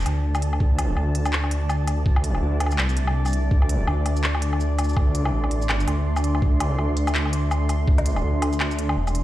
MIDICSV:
0, 0, Header, 1, 4, 480
1, 0, Start_track
1, 0, Tempo, 363636
1, 795, Time_signature, 4, 2, 24, 8
1, 12192, End_track
2, 0, Start_track
2, 0, Title_t, "Ambient pad"
2, 0, Program_c, 0, 92
2, 0, Note_on_c, 0, 57, 90
2, 0, Note_on_c, 0, 62, 88
2, 0, Note_on_c, 0, 74, 76
2, 0, Note_on_c, 0, 81, 82
2, 5500, Note_on_c, 0, 84, 83
2, 5520, Note_off_c, 0, 81, 0
2, 12192, Note_off_c, 0, 57, 0
2, 12192, Note_off_c, 0, 62, 0
2, 12192, Note_off_c, 0, 74, 0
2, 12192, Note_off_c, 0, 84, 0
2, 12192, End_track
3, 0, Start_track
3, 0, Title_t, "Detuned saw bass"
3, 0, Program_c, 1, 39
3, 75, Note_on_c, 1, 38, 96
3, 779, Note_off_c, 1, 38, 0
3, 796, Note_on_c, 1, 38, 106
3, 1260, Note_off_c, 1, 38, 0
3, 1274, Note_on_c, 1, 38, 102
3, 2699, Note_off_c, 1, 38, 0
3, 2716, Note_on_c, 1, 38, 102
3, 3180, Note_off_c, 1, 38, 0
3, 3195, Note_on_c, 1, 38, 100
3, 3659, Note_off_c, 1, 38, 0
3, 3675, Note_on_c, 1, 36, 94
3, 4619, Note_off_c, 1, 36, 0
3, 4635, Note_on_c, 1, 38, 101
3, 5099, Note_off_c, 1, 38, 0
3, 5112, Note_on_c, 1, 38, 97
3, 6538, Note_off_c, 1, 38, 0
3, 6554, Note_on_c, 1, 38, 102
3, 7019, Note_off_c, 1, 38, 0
3, 7034, Note_on_c, 1, 33, 100
3, 7739, Note_off_c, 1, 33, 0
3, 7754, Note_on_c, 1, 38, 96
3, 8459, Note_off_c, 1, 38, 0
3, 8476, Note_on_c, 1, 38, 102
3, 8940, Note_off_c, 1, 38, 0
3, 8954, Note_on_c, 1, 38, 102
3, 10379, Note_off_c, 1, 38, 0
3, 10395, Note_on_c, 1, 38, 101
3, 10859, Note_off_c, 1, 38, 0
3, 10875, Note_on_c, 1, 38, 98
3, 11819, Note_off_c, 1, 38, 0
3, 11836, Note_on_c, 1, 28, 101
3, 12192, Note_off_c, 1, 28, 0
3, 12192, End_track
4, 0, Start_track
4, 0, Title_t, "Drums"
4, 4, Note_on_c, 9, 82, 51
4, 29, Note_off_c, 9, 82, 0
4, 29, Note_on_c, 9, 82, 41
4, 53, Note_off_c, 9, 82, 0
4, 53, Note_on_c, 9, 82, 33
4, 77, Note_on_c, 9, 42, 88
4, 77, Note_on_c, 9, 77, 56
4, 185, Note_off_c, 9, 82, 0
4, 209, Note_off_c, 9, 42, 0
4, 209, Note_off_c, 9, 77, 0
4, 459, Note_on_c, 9, 77, 83
4, 459, Note_on_c, 9, 82, 64
4, 557, Note_on_c, 9, 42, 68
4, 591, Note_off_c, 9, 77, 0
4, 591, Note_off_c, 9, 82, 0
4, 689, Note_off_c, 9, 42, 0
4, 698, Note_on_c, 9, 77, 53
4, 796, Note_on_c, 9, 36, 119
4, 830, Note_off_c, 9, 77, 0
4, 928, Note_off_c, 9, 36, 0
4, 1036, Note_on_c, 9, 42, 84
4, 1036, Note_on_c, 9, 77, 80
4, 1168, Note_off_c, 9, 42, 0
4, 1168, Note_off_c, 9, 77, 0
4, 1275, Note_on_c, 9, 77, 52
4, 1407, Note_off_c, 9, 77, 0
4, 1517, Note_on_c, 9, 42, 70
4, 1649, Note_off_c, 9, 42, 0
4, 1657, Note_on_c, 9, 77, 80
4, 1657, Note_on_c, 9, 82, 65
4, 1756, Note_on_c, 9, 39, 124
4, 1789, Note_off_c, 9, 77, 0
4, 1789, Note_off_c, 9, 82, 0
4, 1888, Note_off_c, 9, 39, 0
4, 1897, Note_on_c, 9, 77, 55
4, 1996, Note_on_c, 9, 42, 85
4, 2029, Note_off_c, 9, 77, 0
4, 2128, Note_off_c, 9, 42, 0
4, 2237, Note_on_c, 9, 77, 79
4, 2237, Note_on_c, 9, 82, 64
4, 2369, Note_off_c, 9, 77, 0
4, 2369, Note_off_c, 9, 82, 0
4, 2475, Note_on_c, 9, 42, 68
4, 2475, Note_on_c, 9, 77, 50
4, 2475, Note_on_c, 9, 82, 61
4, 2607, Note_off_c, 9, 42, 0
4, 2607, Note_off_c, 9, 77, 0
4, 2607, Note_off_c, 9, 82, 0
4, 2716, Note_on_c, 9, 36, 122
4, 2848, Note_off_c, 9, 36, 0
4, 2856, Note_on_c, 9, 77, 76
4, 2955, Note_on_c, 9, 42, 77
4, 2955, Note_on_c, 9, 82, 35
4, 2988, Note_off_c, 9, 77, 0
4, 3087, Note_off_c, 9, 42, 0
4, 3087, Note_off_c, 9, 82, 0
4, 3097, Note_on_c, 9, 77, 48
4, 3229, Note_off_c, 9, 77, 0
4, 3437, Note_on_c, 9, 42, 67
4, 3437, Note_on_c, 9, 77, 72
4, 3517, Note_off_c, 9, 77, 0
4, 3517, Note_on_c, 9, 77, 59
4, 3569, Note_off_c, 9, 42, 0
4, 3578, Note_on_c, 9, 82, 67
4, 3596, Note_off_c, 9, 77, 0
4, 3596, Note_on_c, 9, 77, 48
4, 3676, Note_off_c, 9, 77, 0
4, 3676, Note_on_c, 9, 39, 126
4, 3676, Note_on_c, 9, 77, 51
4, 3710, Note_off_c, 9, 82, 0
4, 3808, Note_off_c, 9, 39, 0
4, 3808, Note_off_c, 9, 77, 0
4, 3818, Note_on_c, 9, 82, 66
4, 3915, Note_on_c, 9, 42, 78
4, 3950, Note_off_c, 9, 82, 0
4, 4047, Note_off_c, 9, 42, 0
4, 4058, Note_on_c, 9, 77, 80
4, 4190, Note_off_c, 9, 77, 0
4, 4297, Note_on_c, 9, 77, 51
4, 4297, Note_on_c, 9, 82, 64
4, 4323, Note_off_c, 9, 82, 0
4, 4323, Note_on_c, 9, 82, 53
4, 4347, Note_off_c, 9, 82, 0
4, 4347, Note_on_c, 9, 82, 42
4, 4396, Note_on_c, 9, 42, 62
4, 4429, Note_off_c, 9, 77, 0
4, 4479, Note_off_c, 9, 82, 0
4, 4528, Note_off_c, 9, 42, 0
4, 4635, Note_on_c, 9, 36, 117
4, 4767, Note_off_c, 9, 36, 0
4, 4777, Note_on_c, 9, 77, 50
4, 4875, Note_on_c, 9, 42, 78
4, 4909, Note_off_c, 9, 77, 0
4, 5007, Note_off_c, 9, 42, 0
4, 5114, Note_on_c, 9, 77, 78
4, 5246, Note_off_c, 9, 77, 0
4, 5355, Note_on_c, 9, 42, 61
4, 5355, Note_on_c, 9, 77, 51
4, 5487, Note_off_c, 9, 42, 0
4, 5487, Note_off_c, 9, 77, 0
4, 5496, Note_on_c, 9, 82, 68
4, 5594, Note_on_c, 9, 39, 125
4, 5628, Note_off_c, 9, 82, 0
4, 5726, Note_off_c, 9, 39, 0
4, 5737, Note_on_c, 9, 77, 77
4, 5835, Note_on_c, 9, 42, 78
4, 5869, Note_off_c, 9, 77, 0
4, 5967, Note_off_c, 9, 42, 0
4, 5977, Note_on_c, 9, 77, 52
4, 6077, Note_on_c, 9, 82, 67
4, 6109, Note_off_c, 9, 77, 0
4, 6209, Note_off_c, 9, 82, 0
4, 6317, Note_on_c, 9, 42, 61
4, 6317, Note_on_c, 9, 77, 71
4, 6317, Note_on_c, 9, 82, 61
4, 6387, Note_off_c, 9, 82, 0
4, 6387, Note_on_c, 9, 82, 51
4, 6449, Note_off_c, 9, 42, 0
4, 6449, Note_off_c, 9, 77, 0
4, 6457, Note_off_c, 9, 82, 0
4, 6457, Note_on_c, 9, 82, 43
4, 6505, Note_off_c, 9, 82, 0
4, 6505, Note_on_c, 9, 82, 33
4, 6555, Note_on_c, 9, 36, 112
4, 6555, Note_on_c, 9, 77, 54
4, 6637, Note_off_c, 9, 82, 0
4, 6687, Note_off_c, 9, 36, 0
4, 6687, Note_off_c, 9, 77, 0
4, 6795, Note_on_c, 9, 42, 74
4, 6795, Note_on_c, 9, 82, 39
4, 6927, Note_off_c, 9, 42, 0
4, 6927, Note_off_c, 9, 82, 0
4, 6936, Note_on_c, 9, 77, 76
4, 7068, Note_off_c, 9, 77, 0
4, 7176, Note_on_c, 9, 77, 52
4, 7275, Note_on_c, 9, 42, 61
4, 7308, Note_off_c, 9, 77, 0
4, 7407, Note_off_c, 9, 42, 0
4, 7416, Note_on_c, 9, 82, 68
4, 7516, Note_on_c, 9, 39, 113
4, 7516, Note_on_c, 9, 77, 80
4, 7548, Note_off_c, 9, 82, 0
4, 7648, Note_off_c, 9, 39, 0
4, 7648, Note_off_c, 9, 77, 0
4, 7657, Note_on_c, 9, 82, 71
4, 7756, Note_on_c, 9, 42, 82
4, 7756, Note_on_c, 9, 77, 54
4, 7789, Note_off_c, 9, 82, 0
4, 7888, Note_off_c, 9, 42, 0
4, 7888, Note_off_c, 9, 77, 0
4, 8137, Note_on_c, 9, 77, 79
4, 8137, Note_on_c, 9, 82, 70
4, 8237, Note_on_c, 9, 42, 61
4, 8269, Note_off_c, 9, 77, 0
4, 8269, Note_off_c, 9, 82, 0
4, 8369, Note_off_c, 9, 42, 0
4, 8378, Note_on_c, 9, 77, 52
4, 8476, Note_on_c, 9, 36, 114
4, 8510, Note_off_c, 9, 77, 0
4, 8608, Note_off_c, 9, 36, 0
4, 8717, Note_on_c, 9, 42, 81
4, 8717, Note_on_c, 9, 77, 84
4, 8849, Note_off_c, 9, 42, 0
4, 8849, Note_off_c, 9, 77, 0
4, 8956, Note_on_c, 9, 77, 54
4, 9088, Note_off_c, 9, 77, 0
4, 9196, Note_on_c, 9, 42, 61
4, 9328, Note_off_c, 9, 42, 0
4, 9336, Note_on_c, 9, 77, 86
4, 9336, Note_on_c, 9, 82, 71
4, 9436, Note_on_c, 9, 39, 121
4, 9468, Note_off_c, 9, 77, 0
4, 9468, Note_off_c, 9, 82, 0
4, 9568, Note_off_c, 9, 39, 0
4, 9577, Note_on_c, 9, 77, 55
4, 9675, Note_on_c, 9, 42, 83
4, 9709, Note_off_c, 9, 77, 0
4, 9807, Note_off_c, 9, 42, 0
4, 9916, Note_on_c, 9, 77, 83
4, 9916, Note_on_c, 9, 82, 68
4, 10048, Note_off_c, 9, 77, 0
4, 10048, Note_off_c, 9, 82, 0
4, 10154, Note_on_c, 9, 42, 64
4, 10154, Note_on_c, 9, 77, 52
4, 10154, Note_on_c, 9, 82, 70
4, 10286, Note_off_c, 9, 42, 0
4, 10286, Note_off_c, 9, 77, 0
4, 10286, Note_off_c, 9, 82, 0
4, 10396, Note_on_c, 9, 36, 115
4, 10528, Note_off_c, 9, 36, 0
4, 10537, Note_on_c, 9, 42, 37
4, 10537, Note_on_c, 9, 77, 82
4, 10635, Note_off_c, 9, 42, 0
4, 10635, Note_on_c, 9, 42, 82
4, 10635, Note_on_c, 9, 82, 37
4, 10669, Note_off_c, 9, 77, 0
4, 10682, Note_off_c, 9, 82, 0
4, 10682, Note_on_c, 9, 82, 30
4, 10715, Note_off_c, 9, 82, 0
4, 10715, Note_on_c, 9, 82, 25
4, 10767, Note_off_c, 9, 42, 0
4, 10776, Note_off_c, 9, 82, 0
4, 10776, Note_on_c, 9, 77, 51
4, 10776, Note_on_c, 9, 82, 19
4, 10796, Note_off_c, 9, 82, 0
4, 10796, Note_on_c, 9, 82, 15
4, 10908, Note_off_c, 9, 77, 0
4, 10928, Note_off_c, 9, 82, 0
4, 11116, Note_on_c, 9, 42, 67
4, 11116, Note_on_c, 9, 77, 82
4, 11248, Note_off_c, 9, 42, 0
4, 11248, Note_off_c, 9, 77, 0
4, 11256, Note_on_c, 9, 82, 68
4, 11356, Note_on_c, 9, 39, 114
4, 11356, Note_on_c, 9, 77, 56
4, 11388, Note_off_c, 9, 82, 0
4, 11488, Note_off_c, 9, 39, 0
4, 11488, Note_off_c, 9, 77, 0
4, 11498, Note_on_c, 9, 82, 71
4, 11597, Note_on_c, 9, 42, 81
4, 11630, Note_off_c, 9, 82, 0
4, 11729, Note_off_c, 9, 42, 0
4, 11738, Note_on_c, 9, 77, 87
4, 11870, Note_off_c, 9, 77, 0
4, 11977, Note_on_c, 9, 77, 58
4, 11977, Note_on_c, 9, 82, 73
4, 12077, Note_on_c, 9, 42, 66
4, 12109, Note_off_c, 9, 77, 0
4, 12109, Note_off_c, 9, 82, 0
4, 12192, Note_off_c, 9, 42, 0
4, 12192, End_track
0, 0, End_of_file